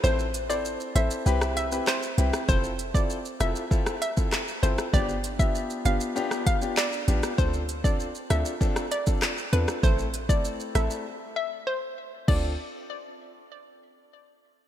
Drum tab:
CC |----------------|----------------|----------------|----------------|
HH |--x---x---x---x-|--x---x---x---x-|--x---x---x---x-|--x---x---x---x-|
SH |xxxxxxxxxxxxxxxx|xxxxxxxxxxxxxxxx|xxxxxxxxxxxxxxxx|xxxxxxxxxxxxxxxx|
CP |------------x---|------------x---|------------x---|------------x---|
SD |---------r--r--r|------r--r--r--r|---------r--r--r|------r--r--r--r|
BD |----------------|o--o----o--o----|o--o------o-----|o--o----o--o----|

CC |----------------|x---------------|
HH |--x---x---------|----------------|
SH |xxxxxxxx--------|----------------|
CP |----------------|----------------|
SD |------r---------|----------------|
BD |o--o------------|o---------------|